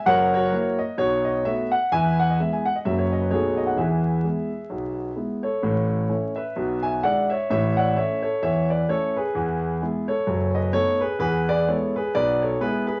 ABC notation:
X:1
M:4/4
L:1/16
Q:"Swing" 1/4=129
K:E
V:1 name="Grand piano"
[^Acf]2 [FAc]4 d2 c2 d2 e2 f2 | [Beg]2 f d e g f d e c d B [GAc]2 d f | [GBe]12 z2 [Ac]2- | [K:A] [Ac]6 [Be]4 [eg]2 [df]2 [ce]2 |
[ce]2 [df]2 [ce]2 [Ac]2 [ce]2 [Bd]2 [Ac]2 [GB]2- | [GB]6 [Ac]4 [B^d]2 [Ac]2 [GB]2 | [GB]2 [Bd]2 [Ac]2 [GB]2 [Bd]2 [Ac]2 [GB]2 [GB]2 |]
V:2 name="Grand piano" clef=bass
[F,,,F,,]4 [F,^A,E]4 [B,,,B,,]4 [=A,B,F]4 | [E,,E,]4 [G,B,E]4 [F,,,F,,F,^A,C]4 [B,,,B,,=A,B,D]4 | [E,,E,]4 [G,B,E]4 [B,,,B,,]4 [G,B,E]4 | [K:A] [A,,,A,,]4 [A,CE]4 [B,,,B,,]4 [G,DE]4 |
[A,,,A,,]4 [A,CE]4 [E,,E,]4 [A,CE]4 | [E,,E,]4 [G,B,E]4 [F,,,F,,]4 [A,B,^D]4 | [E,,E,]4 [G,B,E]4 [B,,,B,,]4 [G,B,E]4 |]